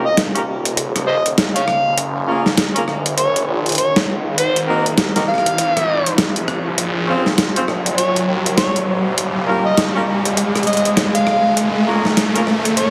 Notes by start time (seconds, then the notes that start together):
Already playing: D#1, riser
0.05 D#5
0.17 G1, snare, closed hi-hat
0.35 D#1 A#3 C#4 F4 G4 A#4, closed hi-hat
0.65 closed hi-hat
0.77 closed hi-hat
0.96 D#1, cross-stick, closed hi-hat
1.08 C5 D#5
1.26 D#1, closed hi-hat
1.38 snare, closed hi-hat
1.56 C#5 F5, closed hi-hat
1.68 cross-stick
1.85 D#1
1.98 F#1, closed hi-hat
2.28 A#3 C#4 F4 G#4 A#4
2.46 snare
2.58 snare, closed hi-hat
2.76 A#3 C#4 F4 G#4 A#4, closed hi-hat
2.88 F#1, cross-stick
3.06 closed hi-hat
3.17 F#1 C#5, closed hi-hat
3.36 closed hi-hat
3.47 A#1
3.66 closed hi-hat
3.69 closed hi-hat
3.72 closed hi-hat
3.75 F#1, closed hi-hat
3.78 C#5, closed hi-hat
3.96 snare, closed hi-hat
4.08 C#2
4.37 G#1 C5, closed hi-hat
4.56 closed hi-hat
4.67 A#3 C4 D#4 F#4 A#4
4.78 G1
4.86 closed hi-hat
4.97 C2, snare, closed hi-hat
5.15 C2 A#3 C4 D#4 F#4 A#4, snare, closed hi-hat
5.28 F5, cross-stick
5.34 cross-stick
5.38 cross-stick
5.46 closed hi-hat
5.58 closed hi-hat
5.76 G#1, cross-stick, closed hi-hat
6.06 closed hi-hat
6.18 snare, closed hi-hat
6.36 C2, closed hi-hat
6.48 cross-stick
6.78 A#1, closed hi-hat
7.08 C4 C#4 F4 G#4 C5
7.26 snare
7.38 snare, closed hi-hat
7.56 C4 C#4 F4 G#4 C5, closed hi-hat
7.68 A#1, cross-stick
7.86 closed hi-hat
7.98 A#1 C#5, closed hi-hat
8.16 closed hi-hat
8.28 D#2
8.46 closed hi-hat
8.57 A#1 C#5, snare, closed hi-hat
8.76 closed hi-hat
8.87 G#1
9.17 D#1, closed hi-hat
9.47 A#3 C#4 F4 G4 A#4
9.65 D#5
9.77 snare, closed hi-hat
9.96 A#3 C#4 F4 G4 A#4
10.25 closed hi-hat
10.37 closed hi-hat
10.55 cross-stick, closed hi-hat
10.57 closed hi-hat
10.63 closed hi-hat
10.67 D#5, closed hi-hat
10.73 closed hi-hat
10.77 closed hi-hat
10.85 D#1, closed hi-hat
10.97 snare, closed hi-hat
11.15 F5, closed hi-hat
11.27 cross-stick
11.57 F#1, closed hi-hat
11.87 A#3 C#4 F4 G#4 A#4
12.05 snare
12.17 snare, closed hi-hat
12.35 A#3 C#4 F4 G#4 A#4, closed hi-hat
12.47 F#1, cross-stick
12.65 closed hi-hat
12.77 F#1 C#5, closed hi-hat